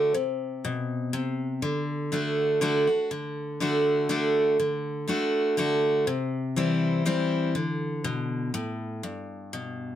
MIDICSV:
0, 0, Header, 1, 2, 480
1, 0, Start_track
1, 0, Tempo, 493421
1, 147, Time_signature, 3, 2, 24, 8
1, 9683, End_track
2, 0, Start_track
2, 0, Title_t, "Steel-string acoustic guitar"
2, 0, Program_c, 0, 25
2, 0, Note_on_c, 0, 50, 85
2, 0, Note_on_c, 0, 57, 89
2, 0, Note_on_c, 0, 62, 100
2, 0, Note_on_c, 0, 66, 97
2, 118, Note_off_c, 0, 50, 0
2, 121, Note_off_c, 0, 57, 0
2, 124, Note_off_c, 0, 62, 0
2, 125, Note_off_c, 0, 66, 0
2, 140, Note_on_c, 0, 48, 78
2, 628, Note_on_c, 0, 47, 93
2, 1058, Note_off_c, 0, 48, 0
2, 1084, Note_off_c, 0, 47, 0
2, 1101, Note_on_c, 0, 48, 92
2, 1560, Note_off_c, 0, 48, 0
2, 1579, Note_on_c, 0, 50, 90
2, 2049, Note_off_c, 0, 50, 0
2, 2061, Note_on_c, 0, 50, 83
2, 2067, Note_on_c, 0, 57, 83
2, 2070, Note_on_c, 0, 62, 91
2, 2078, Note_on_c, 0, 66, 94
2, 2520, Note_off_c, 0, 50, 0
2, 2523, Note_off_c, 0, 57, 0
2, 2525, Note_off_c, 0, 62, 0
2, 2529, Note_off_c, 0, 66, 0
2, 2540, Note_on_c, 0, 50, 95
2, 2546, Note_on_c, 0, 57, 98
2, 2550, Note_on_c, 0, 62, 93
2, 2555, Note_on_c, 0, 66, 97
2, 2783, Note_off_c, 0, 66, 0
2, 2787, Note_off_c, 0, 50, 0
2, 2790, Note_off_c, 0, 57, 0
2, 2793, Note_off_c, 0, 62, 0
2, 2795, Note_on_c, 0, 66, 60
2, 2811, Note_on_c, 0, 62, 47
2, 3013, Note_off_c, 0, 66, 0
2, 3022, Note_off_c, 0, 62, 0
2, 3025, Note_on_c, 0, 50, 83
2, 3494, Note_off_c, 0, 50, 0
2, 3506, Note_on_c, 0, 50, 87
2, 3513, Note_on_c, 0, 57, 89
2, 3519, Note_on_c, 0, 62, 92
2, 3525, Note_on_c, 0, 66, 84
2, 3963, Note_off_c, 0, 50, 0
2, 3966, Note_off_c, 0, 57, 0
2, 3970, Note_off_c, 0, 62, 0
2, 3972, Note_off_c, 0, 66, 0
2, 3980, Note_on_c, 0, 50, 92
2, 3984, Note_on_c, 0, 57, 93
2, 3987, Note_on_c, 0, 62, 93
2, 3995, Note_on_c, 0, 66, 93
2, 4440, Note_off_c, 0, 50, 0
2, 4442, Note_off_c, 0, 57, 0
2, 4444, Note_off_c, 0, 62, 0
2, 4447, Note_off_c, 0, 66, 0
2, 4470, Note_on_c, 0, 50, 81
2, 4925, Note_off_c, 0, 50, 0
2, 4937, Note_on_c, 0, 50, 85
2, 4945, Note_on_c, 0, 57, 84
2, 4950, Note_on_c, 0, 62, 91
2, 4955, Note_on_c, 0, 66, 97
2, 5399, Note_off_c, 0, 50, 0
2, 5403, Note_off_c, 0, 57, 0
2, 5405, Note_off_c, 0, 62, 0
2, 5408, Note_off_c, 0, 66, 0
2, 5420, Note_on_c, 0, 50, 84
2, 5427, Note_on_c, 0, 57, 87
2, 5433, Note_on_c, 0, 62, 96
2, 5438, Note_on_c, 0, 66, 90
2, 5880, Note_off_c, 0, 50, 0
2, 5884, Note_off_c, 0, 57, 0
2, 5887, Note_off_c, 0, 62, 0
2, 5890, Note_off_c, 0, 66, 0
2, 5906, Note_on_c, 0, 48, 88
2, 6385, Note_on_c, 0, 52, 80
2, 6391, Note_on_c, 0, 55, 82
2, 6397, Note_on_c, 0, 60, 88
2, 6398, Note_on_c, 0, 64, 105
2, 6822, Note_off_c, 0, 48, 0
2, 6844, Note_off_c, 0, 52, 0
2, 6847, Note_off_c, 0, 55, 0
2, 6849, Note_off_c, 0, 60, 0
2, 6850, Note_off_c, 0, 64, 0
2, 6863, Note_on_c, 0, 52, 82
2, 6867, Note_on_c, 0, 55, 89
2, 6872, Note_on_c, 0, 60, 105
2, 6877, Note_on_c, 0, 64, 88
2, 7323, Note_off_c, 0, 52, 0
2, 7325, Note_off_c, 0, 55, 0
2, 7327, Note_off_c, 0, 60, 0
2, 7330, Note_off_c, 0, 64, 0
2, 7344, Note_on_c, 0, 50, 79
2, 7826, Note_on_c, 0, 47, 86
2, 8262, Note_off_c, 0, 50, 0
2, 8285, Note_off_c, 0, 47, 0
2, 8307, Note_on_c, 0, 45, 92
2, 8766, Note_off_c, 0, 45, 0
2, 8788, Note_on_c, 0, 43, 83
2, 9272, Note_on_c, 0, 47, 82
2, 9683, Note_off_c, 0, 43, 0
2, 9683, Note_off_c, 0, 47, 0
2, 9683, End_track
0, 0, End_of_file